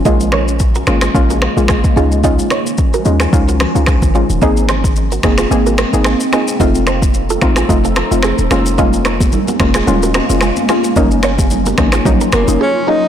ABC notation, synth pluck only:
X:1
M:4/4
L:1/16
Q:"Swing 16ths" 1/4=110
K:Bbm
V:1 name="Synth pluck"
[A,B,DF]4 z2 [A,B,DF]2 [A,B,DF]2 z [A,B,DF]3 [A,DEF]2 | [A,DEF]4 z2 [A,DEF]2 [A,DEF]2 z [A,DEF]3 [A,DEF]2 | [B,CEA]4 z2 [B,CEA]2 [B,CEA]2 z [B,CEA]3 [B,CEA]2 | [=A,CEF]4 z2 [A,CEF]2 [A,CEF]2 z [A,CEF]3 [_A,B,DF]2 |
[A,B,DF]4 z2 [A,B,DF]2 [A,B,DF]2 z [A,B,DF]3 [A,B,DF]2 | [G,B,DE]4 z2 [G,B,DE]2 [G,B,DE]2 z [G,B,DE]3 [G,B,DE]2 |]